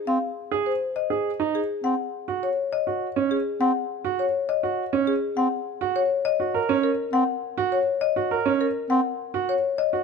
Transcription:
0.07 0.19 C4 medium
0.07 0.27 F5 medium
0.51 0.71 G#4 medium
0.66 0.85 C5 medium
0.96 1.15 D#5 medium
1.10 1.30 G#4 soft
1.40 1.59 D#4 medium
1.55 1.74 G#4 medium
1.84 1.95 C4 medium
1.84 2.03 F#5 medium
2.28 2.47 F#4 medium
2.43 2.62 C#5 medium
2.73 2.92 D#5 medium
2.87 3.06 F#4 medium
3.16 3.35 C#4 medium
3.31 3.50 G#4 medium
3.60 3.71 C4 medium
3.60 3.80 F#5 medium
4.05 4.24 F#4 medium
4.19 4.38 C#5 medium
4.49 4.68 D#5 medium
4.63 4.83 F#4 medium
4.93 5.12 C#4 medium
5.07 5.27 G#4 medium
5.37 5.48 C4 medium
5.37 5.56 F#5 medium
5.81 6.00 F#4 medium
5.96 6.15 C#5 medium
6.25 6.44 D#5 medium
6.40 6.59 F#4 medium
6.54 6.74 A#4 medium
6.69 6.88 C#4 medium
6.84 7.03 A#4 medium
7.13 7.24 C4 medium
7.13 7.32 F#5 medium
7.58 7.77 F#4 medium
7.72 7.91 C#5 medium
8.01 8.21 D#5 medium
8.16 8.35 F#4 medium
8.31 8.50 A#4 medium
8.46 8.65 C#4 medium
8.61 8.80 A#4 medium
8.90 9.01 C4 medium
8.90 9.09 F#5 medium
9.34 9.53 F#4 medium
9.49 9.68 C#5 medium
9.78 9.97 D#5 medium
9.93 10.04 F#4 medium

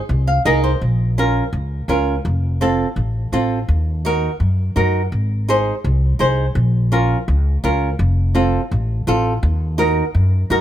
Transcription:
0.09 0.38 C2 loud
0.27 0.44 F5 medium
0.45 0.74 C2 medium
0.45 0.71 D#4 medium
0.45 0.71 G#4 medium
0.45 0.71 A#4 loud
0.45 0.62 D#5 medium
0.64 0.80 C5 medium
0.81 1.39 A#1 medium
1.18 1.43 C#4 medium
1.18 1.43 F4 medium
1.18 1.43 A#4 medium
1.53 1.82 C#2 loud
1.88 2.17 C#2 medium
1.88 2.14 C#4 medium
1.88 2.14 F4 medium
1.88 2.14 A#4 medium
2.25 2.82 F1 loud
2.61 2.86 C4 medium
2.61 2.86 F4 medium
2.61 2.87 A4 medium
2.96 3.25 A1 medium
3.32 3.61 A1 medium
3.32 3.58 C4 medium
3.32 3.58 F4 medium
3.32 3.58 A4 medium
3.68 4.26 D#2 loud
4.05 4.30 D#4 medium
4.05 4.30 F#4 medium
4.05 4.30 A#4 medium
4.40 4.69 F#2 medium
4.76 5.05 F#2 medium
4.76 5.01 D#4 medium
4.76 5.01 F#4 medium
4.76 5.02 A#4 medium
5.12 5.69 G#1 loud
5.49 5.73 D#4 medium
5.49 5.73 G#4 medium
5.49 5.74 C5 medium
5.84 6.13 C2 loud
6.19 6.49 C2 medium
6.19 6.45 D#4 medium
6.19 6.45 G#4 medium
6.19 6.45 C5 loud
6.55 7.13 A#1 loud
6.92 7.17 C#4 medium
6.92 7.17 F4 medium
6.92 7.17 A#4 medium
7.28 7.56 C#2 medium
7.64 7.92 C#2 loud
7.64 7.89 C#4 medium
7.64 7.89 F4 medium
7.64 7.89 A#4 medium
7.99 8.57 F1 loud
8.35 8.60 C4 medium
8.35 8.60 F4 medium
8.35 8.60 A4 medium
8.71 9.00 A1 medium
9.07 9.36 A1 medium
9.07 9.32 C4 medium
9.07 9.32 F4 medium
9.07 9.32 A4 loud
9.43 10.00 D#2 loud
9.78 10.04 D#4 medium
9.78 10.04 F#4 medium
9.78 10.04 A#4 loud
10.15 10.43 F#2 medium
10.50 10.61 F#2 medium
10.50 10.61 D#4 medium
10.50 10.61 F#4 medium
10.50 10.61 A#4 medium

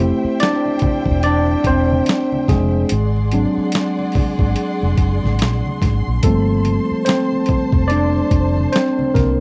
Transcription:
0.00 0.11 F1 loud
0.00 2.87 A3 medium
0.00 0.37 C4 medium
0.00 2.87 E4 medium
0.00 2.87 G4 medium
0.00 0.42 C5 medium
0.00 2.87 C5 medium
0.00 2.86 E5 medium
0.00 2.87 G5 medium
0.00 high conga medium
0.24 muted fingered electric bass stroke medium
0.40 1.21 D4 medium
0.40 1.22 D5 loud
0.40 snare loud
0.40 closed hi-hat medium
0.40 muted conga soft
0.66 muted conga soft
0.79 muted fingered electric bass stroke soft
0.79 kick medium
0.79 closed hi-hat medium
0.79 high conga medium
0.79 low conga medium
1.06 1.54 E1 medium
1.06 kick medium
1.06 low conga medium
1.23 1.64 D4 medium
1.23 1.67 D5 loud
1.23 closed hi-hat medium
1.48 muted conga soft
1.64 1.99 E1 medium
1.64 2.52 C5 loud
1.64 kick medium
1.64 closed hi-hat medium
1.68 2.46 C4 medium
1.90 high conga medium
2.06 snare loud
2.06 closed hi-hat medium
2.06 muted conga soft
2.32 muted conga soft
2.32 high conga medium
2.48 2.83 F1 loud
2.48 4.96 G#3 medium
2.48 4.95 G#4 medium
2.48 kick medium
2.48 snare soft
2.48 closed hi-hat medium
2.48 high conga medium
2.48 low conga medium
2.89 3.45 G#1 loud
2.89 6.20 G#4 medium
2.89 6.20 D5 medium
2.89 6.20 F#5 medium
2.89 9.40 C6 medium
2.89 closed hi-hat loud
2.89 muted conga soft
3.16 muted conga soft
3.31 6.20 F#3 medium
3.31 6.20 C4 soft
3.31 6.21 D4 medium
3.31 closed hi-hat medium
3.31 high conga medium
3.58 muted fingered electric bass stroke soft
3.72 snare loud
3.72 closed hi-hat medium
3.72 muted conga soft
3.99 muted conga soft
4.12 kick medium
4.12 open hi-hat soft
4.16 muted fingered electric bass stroke soft
4.16 high conga medium
4.16 low conga medium
4.39 4.54 G#1 medium
4.39 kick medium
4.39 low conga medium
4.56 closed hi-hat medium
4.82 4.96 F1 loud
4.82 muted conga soft
4.97 5.18 F#1 medium
4.97 kick medium
4.97 closed hi-hat medium
5.23 5.42 G#1 medium
5.23 snare soft
5.23 high conga medium
5.39 5.61 A#1 medium
5.39 snare loud
5.39 closed hi-hat medium
5.66 muted conga soft
5.66 high conga medium
5.82 6.02 G#1 loud
5.82 kick medium
5.82 snare soft
5.82 closed hi-hat medium
5.82 high conga medium
5.82 low conga medium
6.08 6.21 A#1 medium
6.22 6.77 G1 loud
6.22 9.40 F3 medium
6.22 9.40 G3 medium
6.22 7.04 A3 medium
6.22 9.16 A#3 soft
6.22 7.07 C4 medium
6.22 7.10 A4 medium
6.22 9.40 C5 medium
6.22 9.40 A5 medium
6.22 kick loud
6.22 closed hi-hat loud
6.22 muted conga soft
6.65 closed hi-hat medium
6.65 high conga medium
6.91 muted fingered electric bass stroke soft
7.05 7.87 C4 medium
7.05 7.92 C5 medium
7.05 snare loud
7.05 closed hi-hat medium
7.05 muted conga soft
7.32 muted conga soft
7.46 muted fingered electric bass stroke soft
7.46 kick medium
7.46 closed hi-hat medium
7.46 high conga medium
7.46 low conga medium
7.72 8.21 F1 medium
7.72 kick loud
7.72 low conga medium
7.88 8.70 D4 medium
7.88 8.75 D5 loud
7.88 closed hi-hat medium
7.88 muted conga soft
8.16 muted conga soft
8.31 8.66 F1 medium
8.31 kick medium
8.31 closed hi-hat medium
8.57 high conga medium
8.72 9.13 C4 medium
8.72 9.16 C5 medium
8.72 snare loud
8.72 closed hi-hat medium
8.72 muted conga soft
8.99 muted conga soft
8.99 high conga medium
9.14 9.40 C2 medium
9.14 9.40 A#3 medium
9.14 9.40 A#4 medium
9.14 kick loud
9.14 snare soft
9.14 closed hi-hat medium
9.14 high conga medium
9.14 low conga medium

